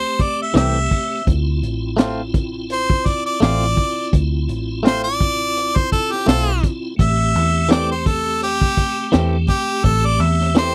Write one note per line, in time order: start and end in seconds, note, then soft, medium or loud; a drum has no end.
0.00 1.22 A3 medium
0.00 1.22 C4 soft
0.00 1.23 G4 medium
0.00 0.23 C5 medium
0.19 0.39 D5 medium
0.19 kick medium
0.19 closed hi-hat medium
0.42 0.56 E5 medium
0.54 0.87 C2 medium
0.54 0.77 E3 medium
0.54 0.78 A3 medium
0.54 0.78 C4 medium
0.54 0.78 G4 medium
0.54 1.25 E5 loud
0.54 snare loud
0.54 closed hi-hat medium
0.91 kick medium
0.91 open hi-hat medium
1.25 1.63 D2 medium
1.25 6.94 C4 medium
1.25 6.95 E4 medium
1.25 6.96 F4 medium
1.25 kick medium
1.25 closed hi-hat medium
1.63 2.91 A1 medium
1.63 closed hi-hat medium
1.97 2.20 A3 medium
1.97 2.21 C4 medium
1.97 2.21 F4 medium
1.97 snare loud
1.97 closed hi-hat medium
2.34 kick medium
2.34 closed hi-hat medium
2.70 3.08 C5 medium
2.70 closed hi-hat medium
2.90 kick medium
3.06 3.24 D5 medium
3.06 kick medium
3.06 closed hi-hat medium
3.26 3.40 D5 medium
3.40 3.74 A1 medium
3.40 3.64 A3 medium
3.40 3.65 C4 medium
3.40 3.65 F4 medium
3.40 4.11 D5 loud
3.40 snare loud
3.40 closed hi-hat medium
3.77 kick medium
3.77 closed hi-hat medium
4.13 4.49 D2 medium
4.13 kick loud
4.13 closed hi-hat medium
4.49 5.77 A1 medium
4.49 closed hi-hat medium
4.83 5.07 A3 medium
4.83 5.07 C4 medium
4.83 5.08 F4 medium
4.83 5.03 C5 medium
4.83 snare loud
4.83 closed hi-hat medium
5.04 5.78 D5 loud
5.21 kick medium
5.21 closed hi-hat medium
5.57 closed hi-hat medium
5.76 5.91 C5 medium
5.76 kick medium
5.92 6.14 A4 medium
5.92 kick medium
5.92 closed hi-hat medium
6.12 6.27 G4 medium
6.12 snare soft
6.27 6.60 B1 medium
6.27 6.50 A3 medium
6.27 6.50 C4 medium
6.27 6.51 F4 medium
6.27 6.63 A4 loud
6.27 snare loud
6.27 closed hi-hat medium
6.63 kick medium
6.63 closed hi-hat medium
6.96 7.36 A1 medium
6.96 10.75 A3 medium
6.96 10.75 C4 medium
6.96 10.75 G4 medium
6.96 kick medium
6.96 closed hi-hat medium
7.01 7.69 E5 loud
7.35 8.64 E2 medium
7.35 closed hi-hat medium
7.69 7.92 E3 medium
7.69 7.93 A3 medium
7.69 7.93 C4 medium
7.69 7.93 G4 medium
7.69 7.89 D5 medium
7.69 snare loud
7.69 closed hi-hat medium
7.91 8.08 C5 medium
8.06 8.41 A4 medium
8.06 kick medium
8.06 closed hi-hat medium
8.42 9.12 G4 loud
8.42 closed hi-hat medium
8.61 kick medium
8.77 kick medium
8.77 closed hi-hat medium
9.12 9.46 E2 medium
9.12 9.35 E3 medium
9.12 9.36 A3 medium
9.12 9.36 C4 medium
9.12 9.37 G4 medium
9.12 snare loud
9.12 closed hi-hat medium
9.48 9.86 G4 medium
9.48 kick medium
9.48 closed hi-hat medium
9.84 10.19 A1 medium
9.84 10.07 A4 medium
9.84 kick medium
9.84 closed hi-hat medium
10.06 10.23 D5 medium
10.19 10.75 E2 medium
10.19 10.56 E5 medium
10.19 closed hi-hat medium
10.41 snare soft
10.55 10.75 E3 medium
10.55 10.75 A3 medium
10.55 10.75 C4 medium
10.55 10.75 G4 medium
10.55 10.75 C5 loud
10.55 snare loud
10.55 closed hi-hat medium